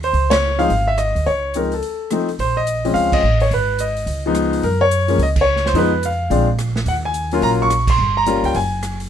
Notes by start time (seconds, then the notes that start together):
Already playing: D#2
0.03 C5, open hi-hat
0.13 C#2, open hi-hat
0.30 C#5, snare, ride
0.58 F3 G#3 C4 D#4 F5, open hi-hat
0.69 G#1, open hi-hat
0.88 E5
0.98 D#5, cross-stick, closed hi-hat
1.15 D2, open hi-hat
1.26 C#2 C#5, open hi-hat
1.54 F3 G#3 C4 D#4 A#4, closed hi-hat
1.72 A4, open hi-hat
1.82 open hi-hat
2.11 F3 A3 C4 D#4, cross-stick, closed hi-hat
2.28 open hi-hat
2.39 A#1 C5, open hi-hat
2.57 D#5
2.67 closed hi-hat
2.85 F3 G#3 C4 C#4, open hi-hat
2.94 C#2 F5, open hi-hat
3.12 D#5, kick, crash
3.23 A1
3.40 C#5, open hi-hat
3.51 G#1 B4, open hi-hat
3.79 D#5, closed hi-hat
3.97 open hi-hat
4.06 C#2, open hi-hat
4.26 F3 G#3 B3 D#4
4.35 cross-stick, closed hi-hat
4.53 open hi-hat
4.63 F#2 A#4, open hi-hat
4.81 C#5
4.91 closed hi-hat
5.08 F3 G#3 A#3 C#4, open hi-hat
5.18 C#2, open hi-hat
5.23 D#5
5.36 kick, crash
5.41 C#5
5.56 snare
5.66 C5, snare
5.73 F2 F3 G#3 B3 D#4, open hi-hat
5.78 B4
6.03 F5, closed hi-hat
6.30 A#1 F3 G#3 C4 D4, open hi-hat
6.59 cross-stick, closed hi-hat
6.76 snare
6.86 D#2 F#5, open hi-hat
7.05 G#5
7.14 closed hi-hat
7.31 F#3 A#3 C#4 F4, open hi-hat
7.41 A#1 A#5, open hi-hat
7.62 C#6
7.70 cross-stick, closed hi-hat
7.87 C6, kick, crash
7.98 G1
8.17 A#5
8.26 G3 A#3 C#4 F4, closed hi-hat
8.43 C#2 G5, open hi-hat
8.54 F#1 G#5, open hi-hat
8.83 cross-stick, closed hi-hat
9.00 open hi-hat